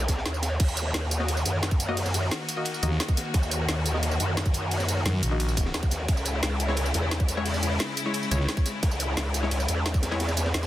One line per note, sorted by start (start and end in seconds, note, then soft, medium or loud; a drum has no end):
0.00 0.24 B1 loud
0.08 kick medium
0.08 snare loud
0.08 closed hi-hat loud
0.08 ride medium
0.08 tambourine medium
0.17 snare medium
0.26 0.59 D#2 loud
0.26 snare loud
0.26 closed hi-hat medium
0.34 tambourine soft
0.42 snare loud
0.42 closed hi-hat medium
0.42 ride medium
0.42 tambourine medium
0.60 0.93 D#2 loud
0.60 6.04 D#3 medium
0.60 6.05 A#3 medium
0.60 6.05 F#4 medium
0.60 kick loud
0.60 closed hi-hat medium
0.60 ride medium
0.60 crash medium
0.68 ride soft
0.68 tambourine soft
0.77 closed hi-hat medium
0.77 ride medium
0.77 tambourine medium
0.93 1.44 D#2 loud
0.93 snare loud
0.93 closed hi-hat medium
0.93 ride medium
1.11 closed hi-hat medium
1.11 ride medium
1.11 tambourine medium
1.19 1.27 A#3 medium
1.19 1.27 F#4 medium
1.19 1.27 D#5 medium
1.19 snare soft
1.28 closed hi-hat medium
1.28 ride medium
1.37 tambourine soft
1.45 2.30 F#2 loud
1.45 closed hi-hat loud
1.45 ride medium
1.45 tambourine medium
1.62 snare loud
1.62 closed hi-hat medium
1.62 ride medium
1.71 kick loud
1.71 ride soft
1.71 tambourine soft
1.80 closed hi-hat loud
1.80 ride medium
1.80 tambourine medium
1.88 1.95 A#3 medium
1.88 1.95 F#4 medium
1.88 1.95 D#5 loud
1.97 closed hi-hat medium
1.97 open hi-hat medium
1.97 ride medium
2.05 snare soft
2.05 tambourine soft
2.14 closed hi-hat loud
2.14 ride medium
2.14 tambourine medium
2.22 ride soft
2.31 snare loud
2.31 closed hi-hat medium
2.31 ride medium
2.49 closed hi-hat loud
2.49 ride medium
2.49 tambourine medium
2.56 2.68 A#3 medium
2.56 2.68 F#4 medium
2.56 2.68 D#5 medium
2.56 ride soft
2.65 closed hi-hat medium
2.65 ride medium
2.74 tambourine soft
2.83 2.99 D#2 loud
2.83 3.92 A#3 medium
2.83 3.92 F#4 medium
2.83 3.92 D#5 medium
2.83 closed hi-hat loud
2.83 ride medium
2.83 tambourine medium
2.91 snare soft
3.00 snare loud
3.00 closed hi-hat medium
3.00 ride medium
3.08 kick loud
3.08 tambourine soft
3.17 snare medium
3.17 closed hi-hat loud
3.17 ride medium
3.17 tambourine medium
3.34 3.67 D#2 loud
3.34 kick loud
3.34 closed hi-hat medium
3.34 ride medium
3.42 ride soft
3.42 tambourine soft
3.51 closed hi-hat medium
3.51 ride medium
3.51 tambourine medium
3.68 4.19 D#2 loud
3.68 snare loud
3.68 closed hi-hat medium
3.68 ride medium
3.68 ride loud
3.85 closed hi-hat medium
3.85 ride medium
3.85 tambourine medium
3.94 4.01 A#3 medium
3.94 4.01 F#4 medium
3.94 4.01 D#5 medium
3.94 snare medium
4.03 closed hi-hat medium
4.03 ride medium
4.11 tambourine soft
4.20 5.04 F#2 loud
4.20 closed hi-hat loud
4.20 ride medium
4.20 tambourine medium
4.37 snare loud
4.37 closed hi-hat medium
4.37 ride medium
4.45 kick loud
4.45 ride soft
4.45 tambourine soft
4.54 closed hi-hat medium
4.54 ride medium
4.54 tambourine medium
4.71 closed hi-hat medium
4.71 open hi-hat medium
4.71 ride medium
4.80 snare soft
4.80 tambourine soft
4.89 closed hi-hat medium
4.89 ride medium
4.89 tambourine medium
4.97 ride soft
5.05 5.21 F#2 loud
5.05 snare loud
5.05 closed hi-hat medium
5.05 ride medium
5.23 5.73 A#1 loud
5.23 closed hi-hat medium
5.23 ride medium
5.23 tambourine medium
5.31 5.42 A#3 medium
5.31 5.42 F#4 medium
5.31 5.42 D#5 medium
5.31 ride soft
5.40 closed hi-hat medium
5.40 ride medium
5.48 tambourine soft
5.57 kick medium
5.57 closed hi-hat medium
5.57 ride medium
5.57 tambourine medium
5.65 snare soft
5.74 6.07 D#2 loud
5.74 snare loud
5.74 closed hi-hat medium
5.74 ride medium
5.83 kick loud
5.83 tambourine soft
5.91 snare medium
5.91 closed hi-hat loud
5.91 ride medium
5.91 tambourine medium
6.08 6.41 C#2 loud
6.08 10.67 C#3 medium
6.08 10.67 G#3 medium
6.08 10.67 E4 loud
6.08 kick loud
6.08 closed hi-hat medium
6.08 ride medium
6.17 ride soft
6.17 tambourine soft
6.25 closed hi-hat medium
6.25 ride medium
6.25 tambourine medium
6.43 6.93 C#2 loud
6.43 snare loud
6.43 closed hi-hat medium
6.43 ride medium
6.60 closed hi-hat medium
6.60 ride medium
6.60 tambourine medium
6.68 6.75 G#3 medium
6.68 6.75 E4 medium
6.68 6.75 C#5 medium
6.68 snare medium
6.76 closed hi-hat medium
6.76 ride medium
6.86 tambourine soft
6.94 7.79 E2 loud
6.94 closed hi-hat medium
6.94 ride medium
6.94 tambourine medium
7.11 snare loud
7.11 closed hi-hat medium
7.11 ride medium
7.11 ride loud
7.20 kick loud
7.20 ride soft
7.20 tambourine soft
7.28 closed hi-hat medium
7.28 ride medium
7.28 tambourine medium
7.37 7.44 G#3 medium
7.37 7.44 E4 medium
7.37 7.44 C#5 loud
7.46 closed hi-hat medium
7.46 open hi-hat medium
7.46 ride medium
7.54 snare soft
7.54 tambourine soft
7.63 closed hi-hat medium
7.63 ride medium
7.63 tambourine medium
7.72 ride soft
7.79 snare loud
7.79 closed hi-hat medium
7.79 ride loud
7.79 ride medium
7.97 closed hi-hat medium
7.97 ride medium
7.97 tambourine medium
8.05 8.16 G#3 medium
8.05 8.16 E4 medium
8.05 8.16 C#5 medium
8.05 ride soft
8.14 closed hi-hat medium
8.14 ride medium
8.23 tambourine soft
8.31 8.47 C#2 loud
8.31 9.41 G#3 medium
8.31 9.41 E4 medium
8.31 9.41 C#5 loud
8.31 closed hi-hat medium
8.31 ride medium
8.31 tambourine medium
8.41 snare soft
8.48 snare loud
8.48 closed hi-hat medium
8.48 ride medium
8.57 kick loud
8.57 tambourine soft
8.66 snare medium
8.66 closed hi-hat medium
8.66 ride medium
8.66 tambourine medium
8.83 9.16 C#2 loud
8.83 kick loud
8.83 closed hi-hat medium
8.83 ride medium
8.91 ride soft
8.91 tambourine soft
9.00 closed hi-hat loud
9.00 ride medium
9.00 tambourine medium
9.17 9.67 C#2 loud
9.17 snare loud
9.17 closed hi-hat medium
9.17 ride medium
9.34 closed hi-hat medium
9.34 ride medium
9.34 tambourine medium
9.43 9.49 G#3 medium
9.43 9.49 E4 medium
9.43 9.49 C#5 medium
9.43 snare soft
9.51 closed hi-hat medium
9.51 ride medium
9.60 tambourine soft
9.68 10.53 E2 loud
9.68 closed hi-hat medium
9.68 ride medium
9.68 tambourine medium
9.86 snare loud
9.86 closed hi-hat medium
9.86 ride medium
9.94 kick loud
9.94 ride soft
9.94 tambourine soft
10.02 snare loud
10.02 closed hi-hat medium
10.02 ride medium
10.02 tambourine medium
10.11 10.18 G#3 loud
10.11 10.18 E4 medium
10.11 10.18 C#5 loud
10.11 snare loud
10.11 ride medium
10.20 snare loud
10.20 closed hi-hat medium
10.20 ride medium
10.28 snare loud
10.28 ride medium
10.28 tambourine soft
10.37 snare loud
10.37 closed hi-hat loud
10.37 ride medium
10.37 tambourine medium
10.46 snare loud
10.46 ride medium
10.54 10.67 E2 loud
10.54 snare loud
10.54 closed hi-hat medium
10.54 ride medium
10.62 snare loud
10.62 ride medium
10.62 tambourine soft